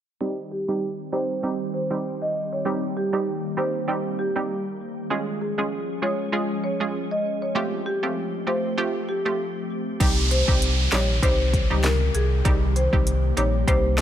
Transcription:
0.21 5.07 D#3 medium
0.21 0.64 G3 medium
0.21 5.07 G3 medium
0.21 0.64 C4 medium
0.21 2.63 C4 medium
0.21 0.65 D#4 medium
0.21 5.07 G4 medium
0.21 0.65 G4 loud
0.52 0.62 G4 medium
0.68 0.85 G3 medium
0.68 0.86 C4 medium
0.68 0.86 D#4 medium
0.68 0.86 G4 medium
1.12 1.32 G3 medium
1.12 1.33 C4 medium
1.12 1.33 D#4 medium
1.12 1.33 G4 medium
1.12 1.32 C5 medium
1.43 1.87 G3 medium
1.43 1.87 C4 medium
1.43 1.87 D#4 medium
1.43 1.87 G4 loud
1.74 1.85 C5 medium
1.91 2.08 G3 medium
1.91 2.08 C4 medium
1.91 2.08 D#4 medium
1.91 2.08 G4 medium
2.22 2.30 D#5 medium
2.53 2.61 C#5 medium
2.65 3.09 G3 loud
2.65 5.08 A#3 medium
2.65 3.09 C4 medium
2.65 3.09 D#4 medium
2.65 3.09 G4 loud
2.97 3.07 G4 medium
3.13 3.30 G3 medium
3.13 3.30 C4 medium
3.13 3.30 D#4 medium
3.13 3.31 G4 medium
3.57 3.77 G3 medium
3.57 3.77 C4 medium
3.57 3.77 D#4 medium
3.57 3.78 G4 medium
3.57 3.77 C5 medium
3.88 4.32 G3 medium
3.88 4.32 C4 medium
3.88 4.32 D#4 medium
3.88 4.32 G4 loud
4.19 4.30 G4 medium
4.36 4.53 G3 medium
4.36 4.53 C4 medium
4.36 4.53 D#4 medium
4.36 4.53 G4 medium
5.10 9.96 F3 medium
5.10 5.54 G#3 medium
5.10 7.53 G#3 medium
5.10 7.53 C#4 medium
5.10 5.54 C#4 medium
5.10 5.54 F4 medium
5.10 7.53 G#4 medium
5.10 5.54 G#4 loud
5.41 5.52 G#4 medium
5.58 5.75 G#3 medium
5.58 5.75 C#4 medium
5.58 5.75 F4 medium
5.58 5.76 G#4 medium
6.02 6.22 G#3 medium
6.02 6.22 C#4 medium
6.02 6.22 F4 medium
6.02 6.22 G#4 medium
6.02 6.22 C#5 medium
6.32 6.76 G#3 medium
6.32 6.77 C#4 medium
6.32 6.77 F4 medium
6.32 6.77 G#4 loud
6.64 6.74 C#5 medium
6.80 6.98 G#3 medium
6.80 6.98 C#4 medium
6.80 6.98 F4 medium
6.80 6.98 G#4 medium
7.11 7.20 D#5 medium
7.42 7.50 C#5 medium
7.55 7.99 A3 loud
7.55 9.98 A3 medium
7.55 7.99 C4 medium
7.55 9.98 C4 medium
7.55 7.99 F4 medium
7.55 9.98 G4 medium
7.55 7.99 G4 loud
7.86 7.97 G4 medium
8.03 8.20 A3 medium
8.03 8.20 C4 medium
8.03 8.20 F4 medium
8.03 8.20 G4 medium
8.47 8.67 A3 medium
8.47 8.67 C4 medium
8.47 8.67 F4 medium
8.47 8.67 G4 medium
8.47 8.66 C5 medium
8.78 9.21 A3 medium
8.78 9.21 C4 medium
8.78 9.22 F4 medium
8.78 9.22 G4 loud
9.09 9.19 G4 medium
9.25 9.43 A3 medium
9.25 9.43 C4 medium
9.25 9.43 F4 medium
9.25 9.43 G4 medium
10.00 10.43 C2 loud
10.00 12.43 C3 medium
10.00 14.01 D#3 medium
10.00 10.44 G3 medium
10.00 14.01 G3 medium
10.00 10.44 C4 medium
10.00 10.44 D#4 medium
10.00 14.01 G4 medium
10.00 10.44 G4 loud
10.00 kick loud
10.00 closed hi-hat medium
10.00 crash loud
10.00 downlifter medium
10.31 10.42 C5 medium
10.31 closed hi-hat medium
10.48 10.87 C2 loud
10.48 10.65 G3 medium
10.48 10.65 C4 medium
10.48 10.65 D#4 medium
10.48 10.65 G4 medium
10.48 kick loud
10.62 closed hi-hat medium
10.92 11.19 A#1 loud
10.92 11.12 G3 medium
10.92 11.12 C4 medium
10.92 11.12 D#4 medium
10.92 11.12 G4 medium
10.92 11.11 C#5 medium
10.92 snare loud
10.92 clap medium
10.92 closed hi-hat medium
11.22 11.65 C2 loud
11.22 11.66 G3 loud
11.22 11.66 C4 medium
11.22 11.66 D#4 medium
11.22 11.67 G4 loud
11.22 11.68 C5 loud
11.22 kick medium
11.22 closed hi-hat medium
11.53 kick loud
11.53 closed hi-hat medium
11.70 12.09 C#2 medium
11.70 11.88 G3 medium
11.70 11.88 C4 medium
11.70 11.88 D#4 medium
11.70 11.88 G4 medium
11.84 11.95 A#4 medium
11.84 snare loud
11.84 clap medium
11.84 closed hi-hat medium
12.14 12.42 C2 medium
12.14 12.25 G#4 medium
12.14 closed hi-hat medium
12.45 12.88 C2 loud
12.45 12.89 G3 loud
12.45 14.01 A#3 medium
12.45 12.89 C4 medium
12.45 12.89 D#4 medium
12.45 12.89 G4 loud
12.45 kick loud
12.45 closed hi-hat medium
12.76 12.87 C5 medium
12.76 closed hi-hat medium
12.93 13.32 C2 loud
12.93 13.10 G3 medium
12.93 13.10 C4 medium
12.93 13.10 D#4 medium
12.93 13.10 G4 medium
12.93 kick loud
13.07 closed hi-hat medium
13.37 13.64 A#1 medium
13.37 13.57 G3 medium
13.37 13.57 C4 medium
13.37 13.57 D#4 medium
13.37 13.57 G4 medium
13.37 13.56 C#5 medium
13.37 closed hi-hat medium
13.67 14.01 C2 loud
13.67 14.01 G3 loud
13.67 14.01 C4 medium
13.67 14.01 D#4 medium
13.67 14.01 G4 loud
13.67 14.01 C5 loud
13.67 kick medium
13.67 closed hi-hat medium
13.98 snare loud

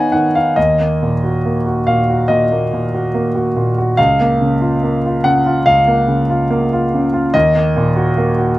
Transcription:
0.00 0.13 D#3 soft
0.00 0.59 B3 soft
0.00 0.36 D#4 soft
0.00 0.59 C#5 medium
0.00 0.56 D#5 medium
0.00 0.35 F5 medium
0.00 0.12 F#5 medium
0.00 0.59 G#5 medium
0.12 0.48 D#3 soft
0.12 0.34 F#5 medium
0.35 0.57 D#4 soft
0.35 0.57 F5 medium
0.56 2.24 D#2 soft
0.56 1.86 D#5 medium
0.80 1.14 A#3 soft
1.03 1.36 A#2 soft
1.24 1.57 F#4 soft
1.45 1.78 A#3 soft
1.66 1.99 F#4 soft
1.87 2.21 A#2 soft
1.87 2.29 F5 medium
2.10 2.42 F#4 soft
2.28 2.63 A#2 soft
2.28 3.97 D#5 medium
2.52 2.84 A#3 soft
2.73 3.06 A#2 soft
2.94 3.27 F#4 soft
3.14 3.47 A#3 soft
3.35 3.68 F#4 soft
3.56 3.90 A#2 soft
3.78 3.98 F#4 soft
3.97 5.63 C#2 medium
3.97 5.25 F5 medium
4.20 4.54 A#3 soft
4.41 4.75 C#3 soft
4.61 4.95 F4 soft
4.83 5.17 A#3 soft
5.06 5.38 F4 soft
5.24 5.58 C#3 soft
5.24 5.66 F#5 medium
5.46 5.80 F4 soft
5.66 7.30 C#2 soft
5.66 7.34 F5 medium
5.88 6.21 A#3 soft
6.08 6.42 C#3 soft
6.30 6.63 F4 soft
6.50 6.84 A#3 soft
6.73 7.06 F4 soft
6.94 7.27 C#3 soft
7.13 7.34 F4 soft
7.34 8.59 D#2 medium
7.34 8.58 D#5 medium
7.55 7.89 A#3 soft
7.76 8.09 A#2 soft
7.96 8.29 F#4 soft
8.18 8.50 A#3 soft
8.38 8.59 F#4 soft

